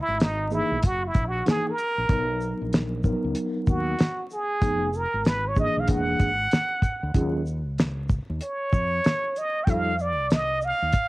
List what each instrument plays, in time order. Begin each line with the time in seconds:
0.01 muted trumpet E4
0.08 fretless electric bass G#1
0.20 muted trumpet D#4, snare, closed hi-hat
0.51 tine electric piano E3 A#3 D#4 G#4, muted trumpet E4, shaker
0.71 fretless electric bass B1
0.82 fretless electric bass F#1, muted trumpet F#4, kick, closed hi-hat
1.07 muted trumpet E4
1.14 fretless electric bass A#1, kick, closed hi-hat, shaker
1.28 muted trumpet F#4
1.46 tine electric piano E3 A#3 D#4 G#4, muted trumpet G#4, snare, closed hi-hat
1.70 muted trumpet A#4
1.78 closed hi-hat, shaker
1.98 fretless electric bass A#1
2.09 fretless electric bass B1, tine electric piano F#3 B3 D#4 A#4, kick, closed hi-hat
2.41 shaker
2.61 fretless electric bass A#1
2.73 snare, closed hi-hat
3.04 tine electric piano F#3 B3 D#4 A#4, kick, shaker
3.24 fretless electric bass C#2
3.35 closed hi-hat
3.67 fretless electric bass D#2, muted trumpet F#4, kick, shaker
3.99 snare, closed hi-hat
4.30 muted trumpet G#4, shaker
4.61 fretless electric bass F1, tine electric piano F3 B3 D#4 G#4, kick, closed hi-hat
4.93 muted trumpet A#4, shaker
5.14 fretless electric bass G#1
5.25 muted trumpet B4, snare, closed hi-hat
5.48 muted trumpet C#5
5.56 tine electric piano E3 A#3 D4 G#4, muted trumpet D#5, kick, shaker
5.77 fretless electric bass B1, muted trumpet F5
5.88 fretless electric bass E1, tine electric piano E3 A#3 D4 G#4, muted trumpet F#5, kick, closed hi-hat
6.20 fretless electric bass G#1, kick, closed hi-hat, shaker
6.51 snare, closed hi-hat
6.82 kick, closed hi-hat, shaker
7.03 fretless electric bass D2
7.14 fretless electric bass D#2, tine electric piano F#3 C#4 F4 G#4, kick, closed hi-hat
7.46 shaker
7.66 fretless electric bass C#2
7.78 snare, closed hi-hat
8.09 kick, shaker
8.29 fretless electric bass D#2
8.41 muted trumpet C#5, closed hi-hat
8.73 fretless electric bass F2, kick, shaker
9.04 snare, closed hi-hat
9.36 muted trumpet D#5, closed hi-hat, shaker
9.64 fretless electric bass F2, tine electric piano G3 D#4 F4 A4, muted trumpet G5, kick, closed hi-hat
9.70 muted trumpet F5
9.99 muted trumpet D5, shaker
10.19 fretless electric bass C2
10.30 muted trumpet D#5, snare, closed hi-hat
10.61 muted trumpet F5, shaker
10.82 fretless electric bass D#2
10.93 kick, closed hi-hat